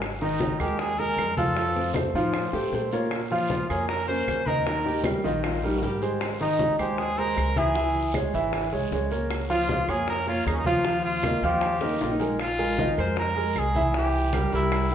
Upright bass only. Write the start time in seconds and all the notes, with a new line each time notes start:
Already playing: G#1
0.60 D#2
1.17 F2
2.14 A2
2.53 A2
2.72 A#2
3.70 F2
4.28 D#2
5.24 A#1
5.82 G#1
6.79 D#2
7.37 C#2
8.34 G#1
8.73 C2
8.91 C#2
9.88 F2
10.46 D#2
11.42 D#2
12.01 A#1
12.98 F2
13.55 C2
14.52 C2